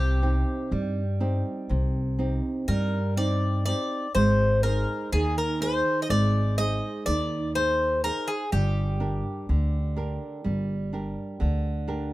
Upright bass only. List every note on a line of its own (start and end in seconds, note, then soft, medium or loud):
0.00 0.42 C2 medium
0.72 1.40 G2 medium
1.70 2.39 C2 medium
2.68 3.71 G2 medium
4.15 4.83 G#1 medium
5.13 5.81 D#2 medium
6.10 6.78 G#1 medium
7.07 8.09 D#2 medium
8.53 9.20 G1 loud
9.49 10.16 D2 medium
10.46 11.13 G1 medium
11.41 12.13 D2 medium